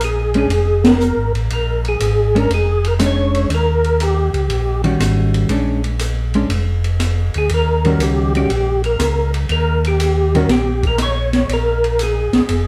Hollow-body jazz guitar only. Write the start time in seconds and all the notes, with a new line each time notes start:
0.35 G#3 C#4 D4
2.35 G#3 C#4 D4
3.00 G#3 C#4 D4
4.84 D#3 G3 C#4 F#4
5.50 G#3 C#4 D4
6.35 G#3 C#4 D4
7.85 D#3 G3 C#4 F#4
8.35 D#3 G3 C#4 F#4
10.35 D#3 G3 C#4 F#4